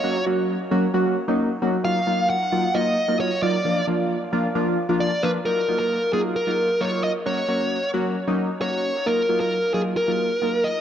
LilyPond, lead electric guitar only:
\new Staff \with { instrumentName = "Lead electric guitar" } { \time 4/4 \key ees \minor \tempo 4 = 133 des''8 r2. r8 | f''4 ges''4 ees''4 des''8 d''8~ | d''8 r2 r8 d''8 ces''8 | bes'8. bes'8. aes'8 bes'4 des''8 ees''8 |
des''4. r4. des''4 | bes'8. bes'8. aes'8 bes'4. ees''8 | }